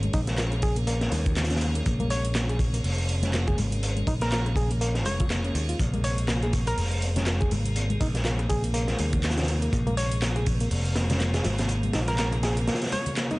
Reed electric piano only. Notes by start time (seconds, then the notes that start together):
0.14 D#4
0.27 A#3
0.38 A#3
0.63 G#4
0.77 A#3
0.87 A#3
1.51 C#4
1.76 A#3
2.00 A#3
2.35 A#3
2.49 G#4
2.74 A#3
3.23 C#4
3.34 A#3
3.48 G#4
4.07 D#4
4.22 A#3
4.32 A#3
4.56 G#4
4.70 A#3
4.81 A#3
5.20 F4
5.44 C#4
5.69 F4
5.94 A#3
6.29 A#3
6.43 G#4
6.67 A#3
7.16 C#4
7.27 A#3
7.41 G#4
8.01 D#4
8.15 A#3
8.25 A#3
8.49 G#4
8.64 A#3
8.74 A#3
9.37 C#4
9.62 A#3
9.87 A#3
10.22 A#3
10.36 G#4
10.61 A#3
11.10 C#4
11.20 A#3
11.34 G#4
11.94 D#4
12.08 A#3
12.19 A#3
12.43 G#4
12.57 A#3
12.68 A#3
13.31 D#4